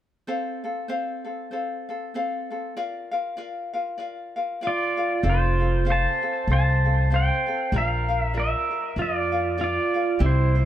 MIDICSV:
0, 0, Header, 1, 4, 480
1, 0, Start_track
1, 0, Key_signature, -1, "major"
1, 0, Tempo, 620476
1, 217, Time_signature, 4, 2, 24, 8
1, 8240, End_track
2, 0, Start_track
2, 0, Title_t, "Pedal steel guitar"
2, 0, Program_c, 0, 26
2, 3613, Note_on_c, 0, 65, 62
2, 3613, Note_on_c, 0, 74, 80
2, 4046, Note_off_c, 0, 65, 0
2, 4090, Note_off_c, 0, 74, 0
2, 4095, Note_on_c, 0, 65, 64
2, 4096, Note_on_c, 0, 72, 82
2, 4527, Note_off_c, 0, 65, 0
2, 4557, Note_off_c, 0, 72, 0
2, 4567, Note_on_c, 0, 72, 69
2, 4577, Note_on_c, 0, 81, 94
2, 5002, Note_off_c, 0, 72, 0
2, 5041, Note_off_c, 0, 81, 0
2, 5041, Note_on_c, 0, 72, 78
2, 5050, Note_on_c, 0, 81, 102
2, 5479, Note_off_c, 0, 72, 0
2, 5524, Note_on_c, 0, 72, 68
2, 5529, Note_off_c, 0, 81, 0
2, 5538, Note_on_c, 0, 79, 92
2, 5960, Note_off_c, 0, 72, 0
2, 6005, Note_on_c, 0, 70, 70
2, 6012, Note_off_c, 0, 79, 0
2, 6016, Note_on_c, 0, 77, 92
2, 6357, Note_off_c, 0, 77, 0
2, 6357, Note_on_c, 0, 76, 92
2, 6440, Note_off_c, 0, 70, 0
2, 6480, Note_on_c, 0, 70, 66
2, 6491, Note_off_c, 0, 76, 0
2, 6495, Note_on_c, 0, 76, 94
2, 6917, Note_off_c, 0, 70, 0
2, 6956, Note_on_c, 0, 65, 67
2, 6970, Note_off_c, 0, 76, 0
2, 6976, Note_on_c, 0, 74, 83
2, 7395, Note_off_c, 0, 65, 0
2, 7435, Note_on_c, 0, 65, 67
2, 7446, Note_off_c, 0, 74, 0
2, 7456, Note_on_c, 0, 74, 82
2, 7874, Note_off_c, 0, 65, 0
2, 7924, Note_on_c, 0, 64, 61
2, 7929, Note_off_c, 0, 74, 0
2, 7938, Note_on_c, 0, 72, 80
2, 8240, Note_off_c, 0, 64, 0
2, 8240, Note_off_c, 0, 72, 0
2, 8240, End_track
3, 0, Start_track
3, 0, Title_t, "Ukulele"
3, 0, Program_c, 1, 24
3, 211, Note_on_c, 1, 72, 74
3, 215, Note_on_c, 1, 60, 71
3, 216, Note_on_c, 1, 69, 69
3, 220, Note_on_c, 1, 77, 69
3, 483, Note_off_c, 1, 77, 0
3, 490, Note_off_c, 1, 69, 0
3, 493, Note_on_c, 1, 77, 53
3, 495, Note_off_c, 1, 72, 0
3, 497, Note_off_c, 1, 60, 0
3, 499, Note_on_c, 1, 69, 46
3, 506, Note_on_c, 1, 60, 41
3, 680, Note_off_c, 1, 60, 0
3, 681, Note_off_c, 1, 69, 0
3, 683, Note_on_c, 1, 72, 68
3, 684, Note_off_c, 1, 77, 0
3, 689, Note_on_c, 1, 60, 68
3, 690, Note_on_c, 1, 69, 63
3, 694, Note_on_c, 1, 77, 75
3, 954, Note_off_c, 1, 77, 0
3, 960, Note_off_c, 1, 69, 0
3, 963, Note_on_c, 1, 77, 46
3, 969, Note_on_c, 1, 69, 36
3, 971, Note_off_c, 1, 60, 0
3, 972, Note_off_c, 1, 72, 0
3, 980, Note_on_c, 1, 60, 36
3, 1162, Note_off_c, 1, 60, 0
3, 1167, Note_on_c, 1, 72, 50
3, 1170, Note_off_c, 1, 69, 0
3, 1171, Note_off_c, 1, 77, 0
3, 1172, Note_on_c, 1, 60, 50
3, 1180, Note_on_c, 1, 69, 56
3, 1184, Note_on_c, 1, 77, 46
3, 1451, Note_off_c, 1, 77, 0
3, 1454, Note_off_c, 1, 72, 0
3, 1456, Note_off_c, 1, 60, 0
3, 1460, Note_off_c, 1, 69, 0
3, 1460, Note_on_c, 1, 77, 49
3, 1468, Note_on_c, 1, 69, 45
3, 1474, Note_on_c, 1, 60, 40
3, 1654, Note_off_c, 1, 60, 0
3, 1657, Note_off_c, 1, 69, 0
3, 1657, Note_on_c, 1, 72, 56
3, 1660, Note_off_c, 1, 77, 0
3, 1663, Note_on_c, 1, 60, 62
3, 1666, Note_on_c, 1, 69, 69
3, 1670, Note_on_c, 1, 77, 73
3, 1928, Note_off_c, 1, 77, 0
3, 1936, Note_off_c, 1, 69, 0
3, 1938, Note_on_c, 1, 77, 49
3, 1939, Note_off_c, 1, 60, 0
3, 1939, Note_off_c, 1, 72, 0
3, 1945, Note_on_c, 1, 69, 42
3, 1948, Note_on_c, 1, 60, 42
3, 2136, Note_off_c, 1, 60, 0
3, 2136, Note_off_c, 1, 77, 0
3, 2139, Note_on_c, 1, 65, 75
3, 2140, Note_on_c, 1, 74, 73
3, 2143, Note_off_c, 1, 69, 0
3, 2144, Note_on_c, 1, 70, 75
3, 2146, Note_on_c, 1, 77, 72
3, 2400, Note_off_c, 1, 77, 0
3, 2409, Note_on_c, 1, 77, 55
3, 2411, Note_off_c, 1, 70, 0
3, 2417, Note_off_c, 1, 65, 0
3, 2420, Note_on_c, 1, 70, 50
3, 2421, Note_off_c, 1, 74, 0
3, 2426, Note_on_c, 1, 65, 48
3, 2601, Note_off_c, 1, 65, 0
3, 2605, Note_on_c, 1, 74, 70
3, 2606, Note_off_c, 1, 70, 0
3, 2606, Note_off_c, 1, 77, 0
3, 2610, Note_on_c, 1, 65, 68
3, 2615, Note_on_c, 1, 70, 71
3, 2615, Note_on_c, 1, 77, 79
3, 2880, Note_off_c, 1, 77, 0
3, 2886, Note_off_c, 1, 70, 0
3, 2889, Note_off_c, 1, 65, 0
3, 2889, Note_on_c, 1, 77, 45
3, 2894, Note_off_c, 1, 74, 0
3, 2896, Note_on_c, 1, 70, 45
3, 2898, Note_on_c, 1, 65, 37
3, 3074, Note_off_c, 1, 65, 0
3, 3076, Note_on_c, 1, 74, 52
3, 3079, Note_off_c, 1, 70, 0
3, 3083, Note_on_c, 1, 65, 50
3, 3084, Note_off_c, 1, 77, 0
3, 3088, Note_on_c, 1, 70, 55
3, 3093, Note_on_c, 1, 77, 58
3, 3363, Note_off_c, 1, 77, 0
3, 3369, Note_off_c, 1, 70, 0
3, 3369, Note_off_c, 1, 74, 0
3, 3372, Note_on_c, 1, 77, 46
3, 3373, Note_off_c, 1, 65, 0
3, 3378, Note_on_c, 1, 70, 45
3, 3385, Note_on_c, 1, 65, 42
3, 3567, Note_off_c, 1, 65, 0
3, 3568, Note_on_c, 1, 74, 62
3, 3569, Note_off_c, 1, 70, 0
3, 3571, Note_off_c, 1, 77, 0
3, 3577, Note_on_c, 1, 65, 70
3, 3579, Note_on_c, 1, 70, 67
3, 3581, Note_on_c, 1, 77, 74
3, 3837, Note_off_c, 1, 77, 0
3, 3846, Note_off_c, 1, 70, 0
3, 3846, Note_on_c, 1, 77, 56
3, 3851, Note_off_c, 1, 65, 0
3, 3855, Note_off_c, 1, 74, 0
3, 3855, Note_on_c, 1, 70, 48
3, 3860, Note_on_c, 1, 65, 40
3, 4041, Note_off_c, 1, 70, 0
3, 4042, Note_off_c, 1, 77, 0
3, 4043, Note_off_c, 1, 65, 0
3, 4044, Note_on_c, 1, 72, 67
3, 4047, Note_on_c, 1, 60, 78
3, 4051, Note_on_c, 1, 77, 83
3, 4052, Note_on_c, 1, 69, 85
3, 4321, Note_off_c, 1, 77, 0
3, 4329, Note_off_c, 1, 69, 0
3, 4330, Note_on_c, 1, 77, 50
3, 4333, Note_off_c, 1, 72, 0
3, 4334, Note_off_c, 1, 60, 0
3, 4338, Note_on_c, 1, 69, 48
3, 4346, Note_on_c, 1, 60, 46
3, 4518, Note_off_c, 1, 60, 0
3, 4524, Note_off_c, 1, 69, 0
3, 4525, Note_on_c, 1, 72, 58
3, 4527, Note_on_c, 1, 60, 65
3, 4528, Note_off_c, 1, 77, 0
3, 4533, Note_on_c, 1, 69, 72
3, 4537, Note_on_c, 1, 77, 79
3, 4798, Note_off_c, 1, 77, 0
3, 4806, Note_off_c, 1, 69, 0
3, 4808, Note_on_c, 1, 77, 37
3, 4812, Note_off_c, 1, 60, 0
3, 4813, Note_off_c, 1, 72, 0
3, 4815, Note_on_c, 1, 69, 40
3, 4821, Note_on_c, 1, 60, 35
3, 5012, Note_off_c, 1, 60, 0
3, 5013, Note_on_c, 1, 72, 50
3, 5014, Note_off_c, 1, 77, 0
3, 5015, Note_off_c, 1, 69, 0
3, 5021, Note_on_c, 1, 60, 50
3, 5024, Note_on_c, 1, 69, 50
3, 5031, Note_on_c, 1, 77, 59
3, 5288, Note_off_c, 1, 77, 0
3, 5293, Note_off_c, 1, 69, 0
3, 5297, Note_off_c, 1, 72, 0
3, 5297, Note_on_c, 1, 77, 45
3, 5301, Note_off_c, 1, 60, 0
3, 5303, Note_on_c, 1, 69, 42
3, 5315, Note_on_c, 1, 60, 43
3, 5492, Note_off_c, 1, 60, 0
3, 5495, Note_on_c, 1, 72, 65
3, 5496, Note_off_c, 1, 69, 0
3, 5498, Note_off_c, 1, 77, 0
3, 5501, Note_on_c, 1, 60, 61
3, 5505, Note_on_c, 1, 69, 65
3, 5507, Note_on_c, 1, 77, 67
3, 5765, Note_off_c, 1, 77, 0
3, 5774, Note_on_c, 1, 77, 48
3, 5777, Note_off_c, 1, 69, 0
3, 5777, Note_off_c, 1, 72, 0
3, 5781, Note_off_c, 1, 60, 0
3, 5786, Note_on_c, 1, 69, 43
3, 5790, Note_on_c, 1, 60, 37
3, 5972, Note_off_c, 1, 77, 0
3, 5975, Note_on_c, 1, 74, 67
3, 5979, Note_off_c, 1, 60, 0
3, 5982, Note_off_c, 1, 69, 0
3, 5982, Note_on_c, 1, 65, 81
3, 5983, Note_on_c, 1, 70, 82
3, 5989, Note_on_c, 1, 77, 79
3, 6246, Note_off_c, 1, 77, 0
3, 6255, Note_on_c, 1, 77, 50
3, 6256, Note_off_c, 1, 70, 0
3, 6257, Note_off_c, 1, 74, 0
3, 6261, Note_off_c, 1, 65, 0
3, 6265, Note_on_c, 1, 70, 53
3, 6274, Note_on_c, 1, 65, 44
3, 6444, Note_off_c, 1, 65, 0
3, 6446, Note_off_c, 1, 77, 0
3, 6447, Note_off_c, 1, 70, 0
3, 6449, Note_on_c, 1, 74, 72
3, 6454, Note_on_c, 1, 65, 70
3, 6456, Note_on_c, 1, 70, 68
3, 6726, Note_off_c, 1, 70, 0
3, 6731, Note_off_c, 1, 65, 0
3, 6734, Note_off_c, 1, 74, 0
3, 6736, Note_on_c, 1, 70, 49
3, 6741, Note_on_c, 1, 65, 38
3, 6924, Note_off_c, 1, 65, 0
3, 6931, Note_off_c, 1, 70, 0
3, 6932, Note_on_c, 1, 74, 53
3, 6933, Note_on_c, 1, 65, 48
3, 6940, Note_on_c, 1, 70, 55
3, 6946, Note_on_c, 1, 77, 63
3, 7201, Note_off_c, 1, 77, 0
3, 7210, Note_on_c, 1, 77, 50
3, 7211, Note_off_c, 1, 70, 0
3, 7215, Note_off_c, 1, 65, 0
3, 7215, Note_off_c, 1, 74, 0
3, 7221, Note_on_c, 1, 70, 47
3, 7230, Note_on_c, 1, 65, 39
3, 7403, Note_off_c, 1, 65, 0
3, 7406, Note_off_c, 1, 70, 0
3, 7407, Note_on_c, 1, 74, 65
3, 7412, Note_on_c, 1, 65, 71
3, 7413, Note_off_c, 1, 77, 0
3, 7415, Note_on_c, 1, 70, 64
3, 7422, Note_on_c, 1, 77, 65
3, 7680, Note_off_c, 1, 77, 0
3, 7689, Note_on_c, 1, 77, 46
3, 7692, Note_off_c, 1, 70, 0
3, 7692, Note_off_c, 1, 74, 0
3, 7695, Note_off_c, 1, 65, 0
3, 7701, Note_on_c, 1, 70, 45
3, 7703, Note_on_c, 1, 65, 43
3, 7883, Note_on_c, 1, 67, 74
3, 7888, Note_off_c, 1, 65, 0
3, 7891, Note_off_c, 1, 70, 0
3, 7891, Note_on_c, 1, 60, 79
3, 7892, Note_off_c, 1, 77, 0
3, 7894, Note_on_c, 1, 64, 83
3, 7897, Note_on_c, 1, 72, 80
3, 8153, Note_off_c, 1, 72, 0
3, 8162, Note_on_c, 1, 72, 58
3, 8164, Note_off_c, 1, 64, 0
3, 8170, Note_off_c, 1, 60, 0
3, 8170, Note_off_c, 1, 67, 0
3, 8173, Note_on_c, 1, 64, 49
3, 8179, Note_on_c, 1, 60, 49
3, 8240, Note_off_c, 1, 60, 0
3, 8240, Note_off_c, 1, 64, 0
3, 8240, Note_off_c, 1, 72, 0
3, 8240, End_track
4, 0, Start_track
4, 0, Title_t, "Upright bass"
4, 0, Program_c, 2, 32
4, 4049, Note_on_c, 2, 29, 90
4, 4676, Note_off_c, 2, 29, 0
4, 5009, Note_on_c, 2, 36, 86
4, 5636, Note_off_c, 2, 36, 0
4, 5973, Note_on_c, 2, 34, 96
4, 6598, Note_off_c, 2, 34, 0
4, 6934, Note_on_c, 2, 41, 70
4, 7558, Note_off_c, 2, 41, 0
4, 7892, Note_on_c, 2, 36, 101
4, 8240, Note_off_c, 2, 36, 0
4, 8240, End_track
0, 0, End_of_file